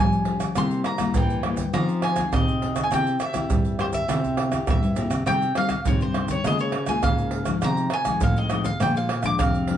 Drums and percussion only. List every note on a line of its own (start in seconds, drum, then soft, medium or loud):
0.12 pandeiro soft
0.12 maracas soft
0.25 pandeiro medium
0.40 pandeiro medium
0.40 tamborim medium
0.40 maracas medium
0.40 surdo soft
0.55 pandeiro medium
0.55 tamborim medium
0.55 maracas medium
0.55 surdo medium
0.71 pandeiro soft
0.71 maracas soft
0.84 pandeiro medium
0.84 tamborim medium
0.98 pandeiro medium
0.98 tamborim medium
0.98 maracas medium
0.98 surdo soft
1.14 pandeiro medium
1.14 maracas medium
1.14 surdo loud
1.30 pandeiro soft
1.30 maracas soft
1.43 pandeiro medium
1.43 tamborim medium
1.57 pandeiro medium
1.57 maracas medium
1.57 surdo soft
1.74 pandeiro medium
1.74 tamborim medium
1.74 maracas medium
1.74 surdo medium
1.89 pandeiro soft
1.89 maracas soft
2.02 pandeiro medium
2.02 tamborim medium
2.16 pandeiro medium
2.16 tamborim medium
2.16 maracas medium
2.16 surdo soft
2.33 pandeiro medium
2.33 tamborim medium
2.33 maracas medium
2.33 surdo loud
2.48 pandeiro soft
2.48 maracas soft
2.62 pandeiro medium
2.76 pandeiro medium
2.76 tamborim medium
2.76 maracas medium
2.76 surdo soft
2.92 pandeiro medium
2.92 tamborim medium
2.92 maracas medium
2.92 surdo medium
3.07 pandeiro soft
3.07 maracas soft
3.20 pandeiro medium
3.20 tamborim medium
3.20 maracas medium
3.34 pandeiro medium
3.34 tamborim medium
3.34 maracas medium
3.34 surdo soft
3.50 pandeiro medium
3.50 maracas medium
3.50 surdo loud
3.65 pandeiro soft
3.65 maracas soft
3.79 pandeiro medium
3.79 tamborim medium
3.93 pandeiro medium
3.93 maracas medium
3.93 surdo soft
4.09 pandeiro medium
4.09 tamborim medium
4.09 maracas medium
4.09 surdo medium
4.24 pandeiro soft
4.24 maracas soft
4.24 surdo soft
4.37 pandeiro medium
4.37 tamborim medium
4.52 pandeiro soft
4.52 tamborim medium
4.52 maracas medium
4.52 surdo soft
4.67 pandeiro medium
4.67 tamborim medium
4.67 maracas medium
4.67 surdo loud
4.83 pandeiro soft
4.83 maracas soft
4.96 pandeiro medium
4.96 maracas medium
5.11 pandeiro medium
5.11 tamborim medium
5.11 maracas medium
5.11 surdo soft
5.26 pandeiro medium
5.26 tamborim medium
5.26 maracas medium
5.26 surdo medium
5.42 pandeiro soft
5.42 maracas soft
5.55 pandeiro medium
5.55 tamborim medium
5.69 pandeiro medium
5.69 tamborim medium
5.69 maracas medium
5.69 surdo soft
5.85 pandeiro medium
5.85 maracas medium
5.85 surdo loud
6.01 pandeiro soft
6.01 maracas soft
6.14 pandeiro medium
6.14 tamborim medium
6.28 pandeiro medium
6.28 maracas medium
6.28 surdo soft
6.44 pandeiro medium
6.44 tamborim medium
6.44 maracas medium
6.44 surdo medium
6.59 pandeiro soft
6.59 maracas soft
6.72 pandeiro medium
6.72 tamborim medium
6.86 pandeiro soft
6.86 tamborim medium
6.86 maracas medium
6.86 surdo soft
7.03 pandeiro medium
7.03 tamborim medium
7.03 maracas medium
7.03 surdo loud
7.18 pandeiro soft
7.18 maracas soft
7.31 pandeiro medium
7.45 pandeiro medium
7.45 tamborim medium
7.45 maracas medium
7.45 surdo soft
7.62 pandeiro medium
7.62 tamborim medium
7.62 maracas medium
7.62 surdo medium
7.77 pandeiro soft
7.77 maracas soft
7.90 pandeiro medium
7.90 tamborim medium
8.05 pandeiro medium
8.05 tamborim medium
8.05 maracas medium
8.05 surdo soft
8.21 pandeiro medium
8.21 maracas medium
8.21 surdo loud
8.36 pandeiro soft
8.36 maracas soft
8.50 pandeiro medium
8.50 tamborim medium
8.50 maracas medium
8.64 pandeiro medium
8.64 maracas medium
8.64 surdo soft
8.80 pandeiro medium
8.80 tamborim medium
8.80 maracas medium
8.80 surdo medium
8.96 pandeiro soft
8.96 maracas soft
9.09 pandeiro medium
9.09 tamborim medium
9.23 pandeiro medium
9.23 tamborim medium
9.23 maracas medium
9.23 surdo soft
9.39 pandeiro medium
9.39 tamborim medium
9.39 maracas medium
9.39 surdo loud
9.54 pandeiro soft
9.54 maracas soft
9.67 pandeiro medium